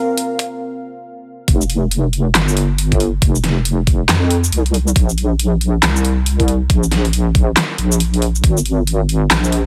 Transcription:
0.00 1.44 C4 medium
0.00 1.44 A#4 medium
0.00 1.45 F5 medium
0.17 closed hi-hat medium
0.39 kick loud
0.39 closed hi-hat soft
1.48 2.34 F1 loud
1.48 kick loud
1.48 closed hi-hat medium
1.61 shaker soft
1.70 closed hi-hat medium
1.91 closed hi-hat medium
2.13 closed hi-hat medium
2.35 3.21 G1 loud
2.35 snare loud
2.35 clap medium
2.35 closed hi-hat medium
2.48 shaker soft
2.57 closed hi-hat medium
2.78 closed hi-hat medium
2.92 kick medium
2.92 closed hi-hat soft
3.00 closed hi-hat medium
3.22 4.08 F1 medium
3.22 kick loud
3.22 closed hi-hat medium
3.35 shaker medium
3.44 snare medium
3.44 closed hi-hat medium
3.65 closed hi-hat medium
3.87 kick loud
3.87 closed hi-hat medium
4.09 4.51 F2 loud
4.09 snare loud
4.09 clap loud
4.09 closed hi-hat medium
4.31 closed hi-hat medium
4.44 shaker medium
4.52 4.94 C2 loud
4.52 closed hi-hat medium
4.66 closed hi-hat soft
4.74 closed hi-hat medium
4.88 shaker medium
4.96 5.81 A#1 loud
4.96 kick loud
4.96 closed hi-hat medium
5.09 shaker medium
5.18 closed hi-hat medium
5.39 closed hi-hat medium
5.61 closed hi-hat medium
5.83 6.68 C2 loud
5.83 snare loud
5.83 clap medium
5.83 closed hi-hat medium
5.96 shaker medium
6.05 closed hi-hat medium
6.26 closed hi-hat medium
6.40 kick medium
6.40 closed hi-hat soft
6.48 closed hi-hat medium
6.70 7.55 A#1 loud
6.70 kick loud
6.70 closed hi-hat medium
6.83 shaker medium
6.91 snare medium
6.91 closed hi-hat medium
7.05 closed hi-hat soft
7.13 closed hi-hat medium
7.35 kick loud
7.35 closed hi-hat soft
7.57 snare loud
7.57 clap medium
7.57 closed hi-hat medium
7.78 8.42 A#1 medium
7.78 closed hi-hat medium
7.92 shaker medium
8.00 closed hi-hat medium
8.14 closed hi-hat soft
8.22 closed hi-hat medium
8.35 shaker medium
8.44 9.29 G#1 loud
8.44 kick loud
8.44 closed hi-hat medium
8.57 shaker medium
8.65 closed hi-hat medium
8.87 closed hi-hat medium
9.09 closed hi-hat medium
9.31 9.66 A#1 loud
9.31 snare loud
9.31 clap medium
9.31 closed hi-hat medium
9.44 shaker medium
9.52 closed hi-hat medium

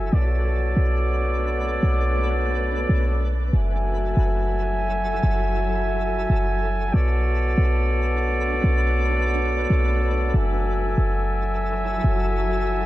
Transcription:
0.00 0.10 F#1 loud
0.13 0.74 B1 loud
0.13 3.50 A3 medium
0.13 3.37 B3 medium
0.13 3.50 D4 medium
0.13 3.37 F#4 medium
0.13 3.37 A4 medium
0.13 3.50 B4 medium
0.13 3.37 C#5 medium
0.13 3.37 D5 medium
0.77 1.79 B1 loud
1.83 2.85 B1 loud
2.89 3.51 B1 loud
3.53 4.15 F#1 loud
3.53 6.90 F#3 medium
3.53 6.90 E4 medium
3.53 12.86 F#4 medium
3.53 6.90 A4 medium
3.53 12.86 A4 medium
3.53 6.91 E5 medium
3.53 6.91 G#5 medium
4.17 5.19 F#1 loud
5.24 6.26 F#1 loud
6.30 6.91 F#1 loud
6.94 7.55 B1 loud
6.94 10.31 A3 medium
6.94 10.31 B3 medium
6.94 10.31 D4 medium
6.94 10.31 B4 medium
6.94 10.31 C#5 medium
6.94 10.31 D5 medium
7.58 8.60 B1 loud
8.64 9.66 B1 loud
9.70 10.32 B1 loud
10.34 10.95 F#1 loud
10.34 12.86 F#3 medium
10.34 12.86 E4 medium
10.34 12.86 A4 medium
10.34 12.86 E5 medium
10.34 12.86 G#5 medium
10.98 12.00 F#1 loud
12.04 12.86 F#1 loud

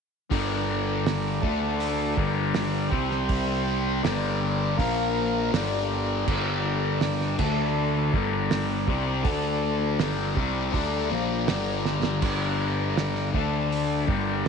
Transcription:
0.30 1.39 G1 medium
0.30 1.41 G2 medium
0.30 1.41 D3 loud
0.30 1.42 G3 medium
0.30 1.42 D4 medium
0.30 1.42 A#4 medium
0.30 1.40 D5 medium
0.30 kick loud
0.30 open hi-hat medium
1.06 snare loud
1.06 open hi-hat medium
1.40 2.14 D2 medium
1.40 2.15 D3 medium
1.40 2.16 D3 medium
1.40 2.16 A3 medium
1.40 2.17 D4 loud
1.40 2.16 A4 medium
1.40 2.14 D5 medium
1.40 kick loud
1.80 open hi-hat medium
2.16 2.88 G1 medium
2.16 2.91 G2 medium
2.16 2.90 D3 medium
2.16 4.75 G3 medium
2.16 2.90 G3 loud
2.16 2.91 D4 medium
2.16 2.90 A#4 medium
2.16 2.90 D5 medium
2.16 kick loud
2.54 snare loud
2.54 open hi-hat medium
2.90 4.00 C2 medium
2.90 4.02 C3 medium
2.90 4.03 G3 loud
2.90 4.03 C4 loud
2.90 4.02 G4 medium
2.90 4.02 C5 medium
2.90 kick loud
3.11 snare soft
3.29 kick loud
3.29 open hi-hat medium
4.03 4.75 G1 medium
4.03 4.77 G2 medium
4.03 4.78 D3 medium
4.03 4.78 G3 medium
4.03 4.77 D4 medium
4.03 7.35 A#4 medium
4.03 4.77 D5 medium
4.03 snare loud
4.03 open hi-hat medium
4.77 5.49 A#1 loud
4.77 5.52 A#2 loud
4.77 5.52 F3 medium
4.77 5.52 A#3 medium
4.77 5.53 A#3 loud
4.77 5.52 F5 medium
4.77 kick loud
4.77 open hi-hat medium
5.52 6.24 G1 medium
5.52 6.26 G2 loud
5.52 6.26 D3 medium
5.52 6.26 G3 loud
5.52 7.37 G3 medium
5.52 7.38 D4 medium
5.52 7.38 D5 medium
5.52 snare loud
5.52 open hi-hat medium
6.27 7.35 G1 medium
6.27 7.38 G2 medium
6.27 7.37 D3 loud
6.27 7.38 G3 medium
6.27 kick loud
6.27 crash medium
7.01 snare loud
7.01 open hi-hat medium
7.21 snare soft
7.38 8.10 D2 medium
7.38 8.12 D3 medium
7.38 8.13 A3 medium
7.38 8.12 A3 loud
7.38 8.13 D4 loud
7.38 8.12 A4 medium
7.38 14.48 D5 medium
7.38 kick loud
7.38 crash medium
8.12 8.84 G1 medium
8.12 8.87 G2 medium
8.12 8.87 D3 loud
8.12 9.24 G3 medium
8.12 8.86 G3 medium
8.12 9.23 D4 medium
8.12 9.24 A#4 medium
8.12 kick loud
8.51 snare loud
8.51 open hi-hat medium
8.87 9.23 C2 medium
8.87 9.23 C3 medium
8.87 9.24 G3 medium
8.87 9.24 C4 loud
8.87 kick loud
9.23 9.96 D2 medium
9.23 9.98 D3 medium
9.23 9.98 A3 loud
9.23 9.99 A3 medium
9.23 9.98 D4 loud
9.23 9.98 A4 medium
9.23 kick loud
9.23 open hi-hat medium
9.98 10.34 G1 medium
9.98 10.35 G2 medium
9.98 10.36 D3 medium
9.98 13.30 G3 medium
9.98 10.35 G3 loud
9.98 13.30 D4 medium
9.98 13.30 A#5 medium
9.98 snare loud
9.98 open hi-hat medium
10.36 10.72 C2 medium
10.36 10.72 C3 medium
10.36 10.72 G3 medium
10.36 10.73 C4 loud
10.36 kick loud
10.72 11.09 D2 medium
10.72 11.09 D3 medium
10.72 11.09 A3 medium
10.72 11.10 D4 loud
10.72 kick medium
10.72 open hi-hat medium
11.10 11.46 A#1 medium
11.10 11.47 A#2 medium
11.10 11.47 F3 loud
11.10 11.47 A#3 medium
11.47 12.19 G1 medium
11.47 12.21 G2 medium
11.47 12.21 D3 medium
11.47 12.22 G3 loud
11.47 snare loud
11.47 open hi-hat medium
11.85 snare medium
12.03 snare medium
12.22 13.30 G1 medium
12.22 13.33 G2 medium
12.22 13.32 D3 medium
12.22 13.34 G3 loud
12.22 kick loud
12.22 open hi-hat medium
12.22 crash medium
12.97 snare loud
12.97 open hi-hat medium
13.15 snare soft
13.34 14.05 D2 medium
13.34 14.06 D3 medium
13.34 14.08 D3 medium
13.34 14.07 A3 loud
13.34 14.09 A3 medium
13.34 14.08 D4 medium
13.34 14.09 A4 medium
13.34 kick loud
13.72 open hi-hat medium
14.07 14.48 G1 medium
14.07 14.48 G2 loud
14.07 14.48 D3 medium
14.07 14.48 G3 medium
14.07 14.48 D4 medium
14.07 14.48 A#4 medium
14.07 kick loud

